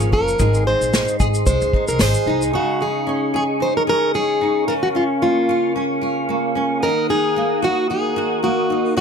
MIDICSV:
0, 0, Header, 1, 6, 480
1, 0, Start_track
1, 0, Key_signature, -5, "major"
1, 0, Tempo, 535236
1, 354, Time_signature, 4, 2, 24, 8
1, 8077, End_track
2, 0, Start_track
2, 0, Title_t, "Tonewheel organ"
2, 0, Program_c, 0, 16
2, 0, Note_on_c, 0, 70, 66
2, 0, Note_on_c, 0, 77, 61
2, 0, Note_on_c, 0, 85, 66
2, 316, Note_off_c, 0, 77, 0
2, 330, Note_off_c, 0, 85, 0
2, 331, Note_off_c, 0, 70, 0
2, 346, Note_on_c, 0, 68, 68
2, 348, Note_on_c, 0, 75, 65
2, 349, Note_on_c, 0, 84, 69
2, 2252, Note_off_c, 0, 68, 0
2, 2253, Note_off_c, 0, 75, 0
2, 2254, Note_off_c, 0, 84, 0
2, 2266, Note_on_c, 0, 75, 61
2, 2272, Note_on_c, 0, 68, 67
2, 2274, Note_on_c, 0, 85, 82
2, 4173, Note_off_c, 0, 75, 0
2, 4176, Note_off_c, 0, 68, 0
2, 4184, Note_on_c, 0, 77, 59
2, 4189, Note_on_c, 0, 61, 70
2, 4189, Note_on_c, 0, 70, 62
2, 6080, Note_off_c, 0, 85, 0
2, 6091, Note_off_c, 0, 77, 0
2, 6093, Note_off_c, 0, 70, 0
2, 6094, Note_off_c, 0, 61, 0
2, 6098, Note_on_c, 0, 78, 58
2, 6100, Note_on_c, 0, 87, 74
2, 6104, Note_on_c, 0, 70, 65
2, 8009, Note_off_c, 0, 87, 0
2, 8039, Note_on_c, 0, 87, 77
2, 8077, Note_off_c, 0, 70, 0
2, 8077, Note_off_c, 0, 78, 0
2, 8077, Note_off_c, 0, 87, 0
2, 8077, End_track
3, 0, Start_track
3, 0, Title_t, "Steel-string acoustic guitar"
3, 0, Program_c, 1, 25
3, 0, Note_on_c, 1, 68, 95
3, 116, Note_off_c, 1, 68, 0
3, 120, Note_on_c, 1, 70, 98
3, 598, Note_off_c, 1, 70, 0
3, 602, Note_on_c, 1, 72, 94
3, 1045, Note_off_c, 1, 72, 0
3, 1076, Note_on_c, 1, 68, 97
3, 1141, Note_off_c, 1, 68, 0
3, 1314, Note_on_c, 1, 72, 103
3, 1661, Note_off_c, 1, 72, 0
3, 1690, Note_on_c, 1, 70, 87
3, 1801, Note_off_c, 1, 70, 0
3, 1801, Note_on_c, 1, 72, 81
3, 2039, Note_on_c, 1, 63, 80
3, 2171, Note_off_c, 1, 72, 0
3, 2283, Note_off_c, 1, 63, 0
3, 2287, Note_on_c, 1, 66, 96
3, 2528, Note_on_c, 1, 68, 84
3, 2529, Note_off_c, 1, 66, 0
3, 2969, Note_off_c, 1, 68, 0
3, 3012, Note_on_c, 1, 68, 105
3, 3075, Note_off_c, 1, 68, 0
3, 3248, Note_on_c, 1, 72, 100
3, 3365, Note_off_c, 1, 72, 0
3, 3381, Note_on_c, 1, 70, 83
3, 3426, Note_off_c, 1, 70, 0
3, 3493, Note_on_c, 1, 70, 111
3, 3719, Note_off_c, 1, 70, 0
3, 3722, Note_on_c, 1, 68, 95
3, 4166, Note_off_c, 1, 68, 0
3, 4196, Note_on_c, 1, 70, 102
3, 4241, Note_off_c, 1, 70, 0
3, 4330, Note_on_c, 1, 66, 86
3, 4375, Note_off_c, 1, 66, 0
3, 4449, Note_on_c, 1, 65, 69
3, 4512, Note_off_c, 1, 65, 0
3, 4685, Note_on_c, 1, 65, 83
3, 5128, Note_off_c, 1, 65, 0
3, 6126, Note_on_c, 1, 70, 98
3, 6345, Note_off_c, 1, 70, 0
3, 6369, Note_on_c, 1, 68, 88
3, 6851, Note_off_c, 1, 68, 0
3, 6855, Note_on_c, 1, 66, 101
3, 7087, Note_off_c, 1, 66, 0
3, 7091, Note_on_c, 1, 68, 88
3, 7563, Note_off_c, 1, 68, 0
3, 7567, Note_on_c, 1, 66, 94
3, 8038, Note_off_c, 1, 66, 0
3, 8049, Note_on_c, 1, 66, 105
3, 8077, Note_off_c, 1, 66, 0
3, 8077, End_track
4, 0, Start_track
4, 0, Title_t, "Nylon-string guitar"
4, 0, Program_c, 2, 24
4, 0, Note_on_c, 2, 46, 78
4, 0, Note_on_c, 2, 53, 70
4, 0, Note_on_c, 2, 58, 62
4, 0, Note_on_c, 2, 61, 65
4, 0, Note_on_c, 2, 65, 67
4, 99, Note_off_c, 2, 61, 0
4, 110, Note_on_c, 2, 61, 68
4, 350, Note_on_c, 2, 44, 76
4, 352, Note_off_c, 2, 46, 0
4, 352, Note_off_c, 2, 65, 0
4, 355, Note_on_c, 2, 68, 65
4, 405, Note_off_c, 2, 61, 0
4, 406, Note_off_c, 2, 58, 0
4, 407, Note_off_c, 2, 53, 0
4, 601, Note_on_c, 2, 60, 58
4, 842, Note_on_c, 2, 63, 68
4, 1071, Note_off_c, 2, 68, 0
4, 1075, Note_on_c, 2, 68, 75
4, 1316, Note_on_c, 2, 56, 69
4, 1557, Note_off_c, 2, 63, 0
4, 1561, Note_on_c, 2, 63, 65
4, 1794, Note_off_c, 2, 68, 0
4, 1797, Note_on_c, 2, 68, 77
4, 2035, Note_off_c, 2, 63, 0
4, 2039, Note_on_c, 2, 63, 67
4, 2272, Note_on_c, 2, 49, 84
4, 2274, Note_off_c, 2, 44, 0
4, 2332, Note_off_c, 2, 60, 0
4, 2512, Note_off_c, 2, 63, 0
4, 2516, Note_on_c, 2, 63, 59
4, 2750, Note_on_c, 2, 61, 68
4, 2990, Note_off_c, 2, 68, 0
4, 2993, Note_on_c, 2, 68, 67
4, 3219, Note_off_c, 2, 63, 0
4, 3230, Note_on_c, 2, 63, 55
4, 3460, Note_off_c, 2, 68, 0
4, 3471, Note_on_c, 2, 68, 65
4, 3711, Note_off_c, 2, 61, 0
4, 3715, Note_on_c, 2, 61, 62
4, 3946, Note_off_c, 2, 63, 0
4, 3957, Note_on_c, 2, 63, 67
4, 4186, Note_off_c, 2, 49, 0
4, 4197, Note_on_c, 2, 49, 85
4, 4247, Note_off_c, 2, 68, 0
4, 4250, Note_off_c, 2, 63, 0
4, 4437, Note_off_c, 2, 61, 0
4, 4437, Note_on_c, 2, 61, 61
4, 4455, Note_off_c, 2, 56, 0
4, 4681, Note_on_c, 2, 58, 68
4, 4923, Note_on_c, 2, 65, 70
4, 5151, Note_off_c, 2, 61, 0
4, 5162, Note_on_c, 2, 61, 63
4, 5383, Note_off_c, 2, 65, 0
4, 5394, Note_on_c, 2, 65, 67
4, 5635, Note_off_c, 2, 58, 0
4, 5639, Note_on_c, 2, 58, 60
4, 5867, Note_off_c, 2, 61, 0
4, 5877, Note_on_c, 2, 61, 62
4, 6117, Note_off_c, 2, 49, 0
4, 6121, Note_on_c, 2, 51, 86
4, 6168, Note_off_c, 2, 65, 0
4, 6170, Note_off_c, 2, 61, 0
4, 6363, Note_on_c, 2, 63, 58
4, 6600, Note_off_c, 2, 58, 0
4, 6604, Note_on_c, 2, 58, 71
4, 6836, Note_on_c, 2, 66, 72
4, 7080, Note_off_c, 2, 63, 0
4, 7083, Note_on_c, 2, 63, 62
4, 7316, Note_off_c, 2, 66, 0
4, 7320, Note_on_c, 2, 66, 70
4, 7553, Note_off_c, 2, 58, 0
4, 7556, Note_on_c, 2, 58, 62
4, 7799, Note_off_c, 2, 63, 0
4, 7803, Note_on_c, 2, 63, 67
4, 8037, Note_off_c, 2, 51, 0
4, 8041, Note_on_c, 2, 54, 85
4, 8077, Note_off_c, 2, 54, 0
4, 8077, Note_off_c, 2, 58, 0
4, 8077, Note_off_c, 2, 63, 0
4, 8077, Note_off_c, 2, 66, 0
4, 8077, End_track
5, 0, Start_track
5, 0, Title_t, "Upright bass"
5, 0, Program_c, 3, 32
5, 0, Note_on_c, 3, 32, 104
5, 113, Note_off_c, 3, 32, 0
5, 113, Note_on_c, 3, 30, 92
5, 311, Note_off_c, 3, 30, 0
5, 353, Note_on_c, 3, 32, 108
5, 659, Note_off_c, 3, 32, 0
5, 724, Note_on_c, 3, 34, 75
5, 922, Note_off_c, 3, 34, 0
5, 1076, Note_on_c, 3, 32, 96
5, 1273, Note_off_c, 3, 32, 0
5, 1312, Note_on_c, 3, 36, 103
5, 1422, Note_off_c, 3, 36, 0
5, 1451, Note_on_c, 3, 37, 92
5, 1538, Note_off_c, 3, 37, 0
5, 1692, Note_on_c, 3, 36, 89
5, 1779, Note_off_c, 3, 36, 0
5, 1799, Note_on_c, 3, 32, 99
5, 1906, Note_off_c, 3, 32, 0
5, 2029, Note_on_c, 3, 36, 94
5, 2229, Note_off_c, 3, 36, 0
5, 8077, End_track
6, 0, Start_track
6, 0, Title_t, "Drums"
6, 1, Note_on_c, 9, 82, 60
6, 91, Note_off_c, 9, 82, 0
6, 115, Note_on_c, 9, 36, 88
6, 205, Note_off_c, 9, 36, 0
6, 251, Note_on_c, 9, 82, 48
6, 341, Note_off_c, 9, 82, 0
6, 351, Note_on_c, 9, 82, 62
6, 355, Note_on_c, 9, 36, 98
6, 441, Note_off_c, 9, 82, 0
6, 445, Note_off_c, 9, 36, 0
6, 486, Note_on_c, 9, 82, 48
6, 576, Note_off_c, 9, 82, 0
6, 731, Note_on_c, 9, 82, 48
6, 821, Note_off_c, 9, 82, 0
6, 839, Note_on_c, 9, 38, 102
6, 839, Note_on_c, 9, 82, 63
6, 929, Note_off_c, 9, 38, 0
6, 929, Note_off_c, 9, 82, 0
6, 968, Note_on_c, 9, 82, 47
6, 1057, Note_off_c, 9, 82, 0
6, 1075, Note_on_c, 9, 82, 60
6, 1076, Note_on_c, 9, 36, 86
6, 1164, Note_off_c, 9, 82, 0
6, 1166, Note_off_c, 9, 36, 0
6, 1206, Note_on_c, 9, 82, 57
6, 1296, Note_off_c, 9, 82, 0
6, 1315, Note_on_c, 9, 36, 86
6, 1316, Note_on_c, 9, 82, 75
6, 1404, Note_off_c, 9, 36, 0
6, 1406, Note_off_c, 9, 82, 0
6, 1447, Note_on_c, 9, 82, 45
6, 1537, Note_off_c, 9, 82, 0
6, 1556, Note_on_c, 9, 36, 85
6, 1645, Note_off_c, 9, 36, 0
6, 1685, Note_on_c, 9, 82, 61
6, 1774, Note_off_c, 9, 82, 0
6, 1787, Note_on_c, 9, 38, 117
6, 1792, Note_on_c, 9, 82, 76
6, 1877, Note_off_c, 9, 38, 0
6, 1882, Note_off_c, 9, 82, 0
6, 1920, Note_on_c, 9, 82, 57
6, 2010, Note_off_c, 9, 82, 0
6, 2169, Note_on_c, 9, 82, 54
6, 2259, Note_off_c, 9, 82, 0
6, 8077, End_track
0, 0, End_of_file